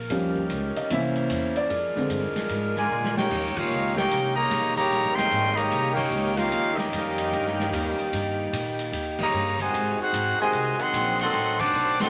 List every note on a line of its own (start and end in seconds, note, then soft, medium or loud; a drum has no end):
0.00 0.88 A#4 loud
0.10 0.49 D#2 medium
0.10 0.40 F3 medium
0.10 0.89 G3 medium
0.10 0.40 G3 soft
0.10 1.69 C#4 medium
0.10 0.40 C#4 medium
0.10 0.89 D#4 medium
0.10 kick soft
0.10 ride medium
0.36 kick medium
0.50 0.74 C#2 medium
0.50 kick soft
0.50 hi-hat pedal medium
0.50 ride medium
0.76 0.90 D#5 medium
0.76 muted upright bass stroke soft
0.76 ride medium
0.90 1.29 C2 loud
0.90 1.66 E3 medium
0.90 1.70 A#3 medium
0.90 1.67 A#3 soft
0.90 1.67 C#4 medium
0.90 1.70 E4 medium
0.90 1.70 C5 medium
0.90 1.53 E5 medium
0.90 kick soft
0.90 ride medium
1.15 ride medium
1.30 1.69 E2 loud
1.30 hi-hat pedal medium
1.30 ride medium
1.56 2.07 D5 medium
1.56 ride medium
1.70 1.94 F2 medium
1.70 3.29 G#3 medium
1.70 3.29 D4 medium
1.70 3.30 F4 medium
1.70 3.29 A#4 loud
1.70 kick soft
1.70 ride medium
1.95 2.19 D3 medium
1.95 2.20 G#3 soft
1.95 2.21 C4 medium
1.95 muted upright bass stroke soft
1.95 snare soft
2.10 2.25 G2 loud
2.10 hi-hat pedal medium
2.10 ride medium
2.23 2.36 F2 medium
2.36 2.49 D2 medium
2.36 snare medium
2.36 ride medium
2.49 2.89 G#2 medium
2.49 kick soft
2.49 ride medium
2.75 3.13 D3 medium
2.75 3.13 F3 medium
2.75 3.13 G#3 medium
2.75 3.14 F4 medium
2.75 3.14 A#4 medium
2.75 3.14 D5 medium
2.75 3.14 G#5 loud
2.75 snare soft
2.91 3.30 A#2 medium
2.91 hi-hat pedal medium
3.04 snare medium
3.16 3.54 A#3 medium
3.16 3.53 C#4 medium
3.16 3.54 D#4 medium
3.16 3.53 G4 medium
3.16 3.54 A#4 medium
3.16 3.54 C#5 loud
3.16 3.54 G5 loud
3.16 snare loud
3.30 3.55 D#2 medium
3.30 9.55 D#3 medium
3.30 9.55 A#3 medium
3.30 9.55 D#4 medium
3.30 9.55 G4 medium
3.30 kick medium
3.30 crash medium
3.56 3.95 A#3 medium
3.56 3.96 C#4 medium
3.56 3.95 D#4 medium
3.56 3.97 F4 medium
3.56 3.96 A#4 medium
3.56 3.95 C#5 medium
3.56 3.97 F5 medium
3.56 muted upright bass stroke soft
3.56 kick loud
3.56 crash medium
3.71 4.10 C#2 loud
3.71 hi-hat pedal medium
3.96 4.34 A#3 loud
3.96 4.34 C#4 loud
3.96 4.34 D#4 loud
3.96 4.33 G4 loud
3.96 4.34 A#4 medium
3.96 4.34 C#5 medium
3.96 4.34 G5 loud
3.96 snare medium
4.11 4.50 C2 medium
4.11 kick soft
4.11 ride medium
4.35 4.72 C#3 medium
4.35 4.72 G3 medium
4.35 4.73 A#3 medium
4.35 4.73 G4 medium
4.35 4.73 C#5 medium
4.35 4.73 D#5 loud
4.35 4.73 A#5 loud
4.51 4.90 B1 loud
4.51 kick soft
4.51 snare soft
4.51 hi-hat pedal medium
4.51 ride medium
4.73 5.12 C#3 medium
4.73 5.12 G3 loud
4.73 5.12 A#3 medium
4.73 5.14 G4 loud
4.73 5.14 C#5 loud
4.73 5.13 D#5 loud
4.73 kick medium
4.73 ride medium
4.78 5.15 A#5 loud
4.91 5.05 A#1 medium
4.91 kick soft
4.91 ride medium
5.03 5.16 G1 medium
5.13 5.30 D#1 medium
5.13 5.52 C#3 loud
5.13 5.52 G3 medium
5.13 5.55 C4 medium
5.13 5.56 A#4 loud
5.13 5.54 D#5 loud
5.13 5.56 G5 loud
5.13 5.56 C6 loud
5.13 snare medium
5.31 5.70 G#1 loud
5.31 kick soft
5.31 hi-hat pedal medium
5.31 ride medium
5.53 5.95 C#3 loud
5.53 5.95 G3 loud
5.53 5.91 A#3 loud
5.53 5.96 G4 loud
5.53 5.95 C#5 medium
5.53 5.96 D#5 loud
5.53 5.96 A#5 loud
5.53 ride medium
5.71 6.10 C2 medium
5.71 kick soft
5.71 ride medium
5.92 6.32 A#3 medium
5.92 6.32 C#4 medium
5.92 6.33 D#4 medium
5.92 6.32 G4 medium
5.92 6.33 A#4 medium
5.92 6.34 C#5 medium
5.92 6.34 G5 loud
5.97 kick loud
5.97 crash medium
6.11 6.50 C#2 loud
6.11 hi-hat pedal medium
6.36 6.75 A#3 medium
6.36 6.77 C#4 medium
6.36 6.77 D#4 loud
6.36 6.77 F4 medium
6.36 6.75 A#4 loud
6.36 6.77 C#5 loud
6.36 6.77 F5 loud
6.36 snare soft
6.36 ride medium
6.51 6.90 D#2 medium
6.51 kick soft
6.51 ride medium
6.75 8.37 G3 medium
6.75 8.37 A#3 medium
6.75 8.37 C#4 medium
6.75 8.37 D#4 medium
6.75 8.37 G4 medium
6.75 8.37 A#4 medium
6.75 8.37 D#5 medium
6.75 snare medium
6.92 7.31 F2 loud
6.92 kick soft
6.92 hi-hat pedal medium
6.92 ride medium
7.18 ride medium
7.33 7.71 G2 medium
7.33 kick soft
7.33 ride medium
7.46 snare soft
7.59 snare medium
7.72 7.96 D#2 loud
7.72 kick soft
7.72 hi-hat pedal medium
7.72 ride medium
7.99 muted upright bass stroke soft
7.99 ride medium
8.13 8.51 G2 medium
8.13 kick soft
8.13 ride medium
8.53 8.91 A#2 medium
8.53 hi-hat pedal medium
8.53 ride medium
8.79 ride medium
8.92 9.31 D#2 medium
8.92 kick soft
8.92 ride medium
9.19 9.57 C#3 medium
9.19 9.57 G3 medium
9.19 9.56 A#3 medium
9.19 9.57 G4 medium
9.19 9.58 C#5 medium
9.19 9.58 D#5 medium
9.19 kick loud
9.19 crash medium
9.23 9.58 A#5 loud
9.33 9.72 G2 loud
9.33 hi-hat pedal medium
9.59 9.96 C3 medium
9.59 9.97 D#3 medium
9.59 9.96 G#3 medium
9.59 9.97 F#4 medium
9.59 9.97 C5 medium
9.59 9.97 D#5 medium
9.59 9.97 G#5 loud
9.59 kick medium
9.59 ride medium
9.72 9.97 G#2 medium
9.72 11.31 G#3 medium
9.72 12.09 C4 medium
9.72 11.31 F#4 loud
9.72 kick soft
9.72 ride medium
9.98 10.39 C4 medium
9.98 10.39 D#4 medium
9.98 10.39 F#4 medium
9.98 muted upright bass stroke soft
10.03 10.41 D#4 medium
10.03 10.41 G#4 medium
10.03 10.40 C5 medium
10.03 10.41 F#5 loud
10.13 10.37 G#1 medium
10.13 kick soft
10.13 hi-hat pedal medium
10.13 ride medium
10.38 10.76 C3 medium
10.38 10.76 D#3 loud
10.38 10.77 G#3 loud
10.38 10.77 F#4 medium
10.38 10.77 C5 medium
10.38 10.77 D#5 medium
10.38 10.78 G#5 loud
10.38 muted upright bass stroke soft
10.52 10.77 C2 medium
10.52 kick soft
10.52 ride medium
10.77 11.19 D#3 medium
10.77 11.19 F#3 medium
10.77 11.19 C4 medium
10.77 11.20 G#4 medium
10.77 11.19 D#5 medium
10.77 11.19 F#5 medium
10.77 11.19 C6 loud
10.77 muted upright bass stroke soft
10.77 ride medium
10.93 11.32 A#1 loud
10.93 kick soft
10.93 hi-hat pedal medium
10.93 ride medium
11.19 11.57 D#3 medium
11.19 11.57 F#3 loud
11.19 11.57 C4 medium
11.19 11.57 A4 medium
11.19 11.57 D#5 loud
11.19 11.57 F#5 loud
11.19 11.57 C6 loud
11.19 ride medium
11.33 11.72 A1 medium
11.33 12.09 A3 medium
11.33 12.09 F#4 medium
11.33 kick soft
11.33 ride medium
11.59 12.00 D#3 medium
11.59 11.99 F#3 medium
11.59 12.00 D4 medium
11.59 11.99 C5 loud
11.59 11.99 F#5 loud
11.59 12.00 A5 loud
11.59 11.99 D6 loud
11.59 kick loud
11.59 crash medium
11.73 12.09 B1 loud
11.73 hi-hat pedal medium
12.00 12.09 D#3 medium
12.00 12.09 F#3 loud
12.00 12.09 C4 loud
12.00 12.09 A4 loud
12.00 12.09 D#5 loud
12.00 12.09 F#5 medium
12.00 12.09 C6 loud
12.00 snare medium
12.00 ride medium